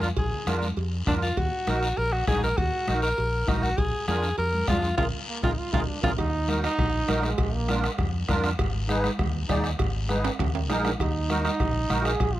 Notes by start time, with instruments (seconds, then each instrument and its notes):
Already playing: fingered electric bass F2
0.02 alto saxophone F4, short guiro
0.17 fingered electric bass A#1, alto saxophone G#4, bombo low, cowbell, long guiro
0.33 low conga
0.47 fingered electric bass F2, accordion D4 F4 A#4, bombo rim, high conga, short guiro
0.62 high conga, short guiro
0.77 fingered electric bass F2, cowbell, high conga, long guiro
1.07 fingered electric bass F2, accordion D4 F4 A#4, alto saxophone D4, bombo low, bombo rim, high conga, low conga, short guiro
1.22 alto saxophone F4, short guiro
1.37 fingered electric bass D#2, alto saxophone F#4, bombo low, cowbell, high conga, long guiro
1.67 fingered electric bass A#1, accordion D#4 F#4 A#4, bombo rim, high conga, short guiro
1.83 short guiro
1.97 fingered electric bass A#1, alto saxophone A#4, cowbell, high conga, long guiro
2.12 alto saxophone F#4, bombo rim
2.27 fingered electric bass A#1, accordion D#4 F#4 G#4, alto saxophone G#4, bombo low, bombo rim, high conga, short guiro
2.43 alto saxophone A#4, short guiro
2.57 fingered electric bass D#2, alto saxophone F#4, bombo low, cowbell, long guiro
2.88 fingered electric bass A#1, accordion D#4 F#4 A#4, bombo rim, high conga, short guiro
3.02 alto saxophone A#4, short guiro
3.18 fingered electric bass A#1, cowbell, high conga, long guiro
3.47 fingered electric bass A#1, accordion D#4 F#4 A#4, alto saxophone D#4, bombo low, bombo rim, high conga, low conga, short guiro
3.62 alto saxophone F#4, short guiro
3.78 fingered electric bass A#1, alto saxophone G#4, bombo low, cowbell, high conga, long guiro
4.08 fingered electric bass F2, accordion D4 F4 A#4, alto saxophone G#4, bombo rim, high conga, short guiro
4.23 short guiro
4.38 fingered electric bass F2, alto saxophone A#4, cowbell, high conga, long guiro
4.53 high conga
4.68 fingered electric bass F2, accordion D4 F4 G#4, alto saxophone F4, bombo low, bombo rim, high conga, low timbale, short guiro
4.82 short guiro
4.97 fingered electric bass A#1, alto saxophone F4, accordion F4 G#4 A#4, bombo low, low conga, high timbale, long guiro
5.29 trombone A#3
5.43 fingered electric bass A#1, trombone D#4, accordion F4 G#4 A#4, alto saxophone F4, bombo low, low conga, high timbale, long guiro
5.58 trombone F4
5.73 fingered electric bass A#1, trombone D#4, accordion F4 G#4 A#4, alto saxophone F4, bombo low, low conga, high timbale, long guiro
5.88 trombone D4
6.03 fingered electric bass A#1, trombone D4, accordion F4 G#4 A#4, alto saxophone F4, bombo low, low conga, high timbale, long guiro
6.18 fingered electric bass D#2, trombone D#4, bombo low, bombo rim, cowbell, long guiro
6.48 accordion D#4 F#4 A#4, bombo rim, high conga, short guiro
6.63 trombone D#4, bombo rim, high conga, short guiro
6.78 fingered electric bass A#1, bombo low, bombo rim, cowbell, low conga, long guiro
7.08 fingered electric bass A#1, accordion D#4 F#4 A#4, bombo rim, high conga, low timbale, short guiro
7.23 trombone G#3, bombo rim, short guiro
7.38 fingered electric bass A#1, bombo low, bombo rim, cowbell, long guiro
7.54 trombone A#3
7.68 accordion D4 F4 A#4, bombo rim, high conga, short guiro
7.84 bombo rim, short guiro
7.98 fingered electric bass F2, bombo low, bombo rim, cowbell, low conga, long guiro
8.28 fingered electric bass F2, accordion D4 F4 A#4, bombo low, bombo rim, high conga, low conga, short guiro
8.44 bombo rim, short guiro
8.59 fingered electric bass G#1, bombo low, bombo rim, cowbell, long guiro
8.88 accordion D#4 G#4 B4, bombo rim, high conga, short guiro
9.04 bombo rim, high conga, short guiro
9.19 fingered electric bass D#2, bombo low, bombo rim, cowbell, low conga, long guiro
9.49 fingered electric bass D#2, accordion D#4 G#4 D5, bombo low, bombo rim, high conga, low timbale, short guiro
9.64 bombo rim, short guiro
9.79 fingered electric bass G#1, bombo low, bombo rim, cowbell, low conga, long guiro
10.09 accordion D#4 G#4 B4, bombo rim, high conga, short guiro
10.24 bombo rim, high timbale, short guiro
10.39 fingered electric bass D#2, bombo low, bombo rim, cowbell, low conga, high timbale, long guiro
10.55 high timbale
10.69 fingered electric bass A#1, accordion D#4 G#4 A#4, bombo rim, high conga, low timbale, short guiro
10.85 trombone D4, bombo rim, low timbale, short guiro
11.00 fingered electric bass D#2, trombone D#4, bombo low, bombo rim, cowbell, long guiro
11.29 accordion D#4 F#4 A#4, bombo rim, high conga, short guiro
11.44 trombone D#4, bombo rim, high conga, short guiro
11.60 fingered electric bass A#1, bombo low, bombo rim, cowbell, low conga, long guiro
11.90 fingered electric bass A#1, accordion D#4 F#4 A#4, bombo rim, high conga, low conga, short guiro
12.04 trombone G#4, bombo rim, short guiro
12.20 fingered electric bass A#1, bombo low, bombo rim, cowbell, long guiro
12.34 trombone F4